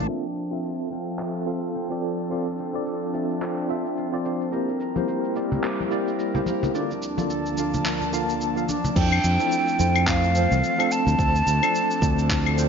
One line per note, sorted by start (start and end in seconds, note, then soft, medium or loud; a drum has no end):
0.00 2.33 D4 medium
0.00 1.25 A#4 medium
0.07 4.49 F3 medium
0.07 0.23 C4 medium
0.07 0.91 C4 medium
0.07 6.71 C4 medium
0.07 0.24 F4 medium
0.07 4.49 A4 medium
0.07 0.24 A4 medium
0.07 0.24 E5 medium
0.07 cabasa soft
0.36 cabasa medium
0.51 0.88 C4 medium
0.51 0.88 F4 medium
0.51 0.89 A4 medium
0.51 0.89 E5 medium
0.51 cabasa soft
0.63 2.30 F4 medium
0.63 cabasa soft
0.79 cabasa soft
0.91 1.16 C4 medium
0.91 1.75 C4 medium
0.91 1.16 F4 medium
0.91 1.17 A4 medium
0.91 1.17 F5 medium
0.91 cabasa medium
1.07 cabasa soft
1.19 1.44 C4 medium
1.19 1.44 F4 medium
1.19 1.47 A4 medium
1.19 1.45 A4 medium
1.19 1.45 E5 medium
1.19 clap medium
1.35 cabasa soft
1.46 1.86 C4 medium
1.46 1.87 F4 medium
1.46 2.86 A4 medium
1.46 1.87 A4 medium
1.46 1.87 F5 medium
1.46 cabasa medium
1.63 cabasa soft
1.75 2.59 C4 medium
1.75 cabasa soft
1.90 2.27 C4 medium
1.90 2.28 F4 medium
1.90 2.28 A4 medium
1.90 2.28 D5 medium
1.90 cabasa soft
2.02 4.50 D4 medium
2.02 cabasa medium
2.18 cabasa soft
2.30 2.46 C4 medium
2.30 2.46 F4 medium
2.30 3.97 F4 medium
2.30 2.46 A4 medium
2.30 2.47 D5 medium
2.30 cabasa soft
2.46 cabasa soft
2.58 3.42 C4 medium
2.58 cabasa medium
2.73 3.11 C4 medium
2.73 3.11 F4 medium
2.73 3.11 A4 medium
2.73 3.11 D5 medium
2.73 cabasa soft
2.86 3.13 A4 medium
2.86 cabasa soft
3.02 cabasa soft
3.13 3.39 C4 medium
3.13 3.39 F4 medium
3.13 4.58 A4 medium
3.13 3.39 A4 medium
3.13 3.39 E5 medium
3.13 cabasa medium
3.30 cabasa soft
3.41 3.66 C4 medium
3.41 4.25 C4 medium
3.41 3.66 F4 medium
3.41 3.67 A4 medium
3.41 3.67 D5 medium
3.41 clap medium
3.41 cabasa soft
3.58 cabasa soft
3.68 4.09 C4 medium
3.68 4.09 F4 medium
3.68 4.09 A4 medium
3.68 4.10 E5 medium
3.68 cabasa medium
3.86 cabasa soft
3.97 6.50 F4 medium
3.97 cabasa soft
4.12 4.49 C4 medium
4.12 4.50 F4 medium
4.12 4.50 A4 medium
4.12 4.50 D5 medium
4.12 cabasa soft
4.25 5.08 C4 medium
4.25 cabasa medium
4.41 cabasa soft
4.51 6.73 G3 medium
4.51 4.68 A#3 medium
4.51 4.68 E4 medium
4.51 6.73 E4 medium
4.51 4.68 G4 medium
4.51 4.80 A#4 medium
4.51 6.73 A#4 medium
4.51 4.69 C5 medium
4.51 cabasa soft
4.69 cabasa soft
4.80 6.18 A#4 medium
4.80 cabasa medium
4.95 5.33 A#3 medium
4.95 5.33 E4 medium
4.95 5.33 G4 medium
4.95 5.34 C5 medium
4.95 high conga medium
4.95 cabasa soft
5.08 5.91 C4 medium
5.08 cabasa soft
5.24 cabasa soft
5.35 5.60 A#3 medium
5.35 5.61 E4 medium
5.35 5.61 G4 medium
5.35 5.61 D5 medium
5.35 cabasa medium
5.52 low conga medium
5.52 cabasa soft
5.62 5.88 A#3 medium
5.62 5.88 E4 medium
5.62 7.99 G4 medium
5.62 5.89 G4 medium
5.62 5.89 C5 medium
5.62 clap medium
5.62 cabasa soft
5.80 high conga medium
5.80 cabasa soft
5.90 6.31 A#3 medium
5.90 8.92 C4 medium
5.90 6.31 E4 medium
5.90 6.31 G4 medium
5.90 6.32 D5 medium
5.90 cabasa medium
6.08 cabasa soft
6.19 6.47 A#4 medium
6.19 cabasa soft
6.34 6.71 A#3 medium
6.34 6.72 E4 medium
6.34 6.72 G4 medium
6.34 6.72 C5 medium
6.34 low conga medium
6.34 cabasa soft
6.46 7.36 A#4 medium
6.46 high conga medium
6.46 cabasa medium
6.63 low conga medium
6.63 cabasa soft
6.73 8.95 D2 medium
6.73 6.90 D3 medium
6.73 8.95 F3 medium
6.73 6.90 A#3 medium
6.73 8.95 A#3 medium
6.73 8.95 D4 medium
6.73 7.58 D4 medium
6.73 6.90 F4 medium
6.73 6.90 A4 medium
6.73 6.91 D5 medium
6.73 8.95 A5 medium
6.73 cabasa soft
6.91 cabasa soft
7.03 cabasa medium
7.17 7.54 D3 medium
7.17 7.55 A#3 medium
7.17 7.55 F4 medium
7.17 7.55 A4 medium
7.17 7.55 D5 medium
7.17 high conga medium
7.17 cabasa soft
7.30 7.92 A4 medium
7.30 cabasa soft
7.46 cabasa soft
7.58 7.83 D3 medium
7.58 7.83 A#3 medium
7.58 8.69 D4 medium
7.58 7.83 F4 medium
7.58 7.84 A4 medium
7.58 7.84 F5 medium
7.58 cabasa medium
7.74 low conga medium
7.74 cabasa soft
7.85 8.10 D3 medium
7.85 8.10 A#3 medium
7.85 8.11 F4 medium
7.85 8.11 A4 medium
7.85 8.47 A#4 medium
7.85 8.11 D5 medium
7.85 clap medium
7.85 cabasa soft
8.02 high conga medium
8.02 cabasa soft
8.12 8.53 D3 medium
8.12 8.53 A#3 medium
8.12 8.53 F4 medium
8.12 10.66 F4 medium
8.12 8.54 F5 medium
8.12 8.54 A5 medium
8.12 cabasa medium
8.30 cabasa soft
8.41 10.61 A4 medium
8.41 cabasa soft
8.56 8.68 D3 medium
8.56 8.68 A#3 medium
8.56 8.69 F4 medium
8.56 8.69 A4 medium
8.56 8.69 F5 medium
8.56 cabasa soft
8.69 11.49 D4 medium
8.69 high conga medium
8.69 cabasa medium
8.85 low conga medium
8.85 cabasa soft
8.95 9.19 F2 loud
8.95 9.12 F3 medium
8.95 12.69 A3 medium
8.95 12.69 C4 medium
8.95 9.12 C4 medium
8.95 9.13 E4 medium
8.95 10.89 A4 medium
8.95 9.13 A4 medium
8.95 10.10 G5 loud
8.95 kick loud
8.95 crash loud
8.95 cabasa soft
9.12 cabasa soft
9.12 claves medium
9.24 9.37 F2 medium
9.24 cabasa medium
9.39 9.76 F3 medium
9.39 9.77 C4 medium
9.39 9.77 E4 medium
9.39 9.77 A4 loud
9.39 cabasa soft
9.52 cabasa soft
9.68 cabasa soft
9.79 10.46 F2 loud
9.79 10.05 F3 medium
9.79 10.05 C4 medium
9.79 10.05 E4 medium
9.79 10.05 C5 medium
9.79 cabasa medium
9.96 cabasa soft
9.96 claves medium
10.07 10.32 F3 medium
10.07 10.33 C4 medium
10.07 10.33 E4 medium
10.07 10.33 A4 medium
10.07 10.93 F5 loud
10.07 kick loud
10.07 clap medium
10.07 cabasa soft
10.24 cabasa soft
10.34 10.76 E3 medium
10.34 10.75 F3 medium
10.34 10.75 C4 medium
10.34 10.76 C5 loud
10.34 cabasa medium
10.52 10.61 C2 medium
10.52 cabasa soft
10.64 cabasa soft
10.78 11.16 F3 medium
10.78 11.16 C4 medium
10.78 11.16 D4 medium
10.78 11.17 A4 loud
10.78 cabasa soft
10.78 claves medium
10.91 12.69 D4 medium
10.91 12.69 A4 medium
10.91 12.58 A5 loud
10.91 cabasa medium
11.07 11.16 D2 loud
11.07 cabasa soft
11.18 11.41 D2 loud
11.18 11.34 F3 medium
11.18 11.35 C4 medium
11.18 11.35 D4 medium
11.18 11.35 A4 loud
11.18 kick loud
11.18 cabasa soft
11.35 cabasa soft
11.47 11.59 D2 medium
11.47 cabasa medium
11.62 11.99 F3 loud
11.62 12.00 C4 medium
11.62 12.00 D4 medium
11.62 12.00 A4 loud
11.62 cabasa soft
11.62 claves medium
11.75 cabasa soft
11.91 cabasa soft
12.02 12.68 D2 loud
12.02 12.27 F3 medium
12.02 12.27 C4 medium
12.02 12.28 D4 medium
12.02 12.28 C5 medium
12.02 kick loud
12.02 cabasa medium
12.19 cabasa soft
12.30 12.55 F3 medium
12.30 12.55 C4 medium
12.30 12.56 D4 medium
12.30 12.56 A4 medium
12.30 kick loud
12.30 clap medium
12.30 cabasa soft
12.46 cabasa soft
12.46 claves medium
12.57 12.69 F3 medium
12.57 12.69 C4 medium
12.57 12.69 D4 medium
12.57 12.69 C5 loud
12.57 cabasa medium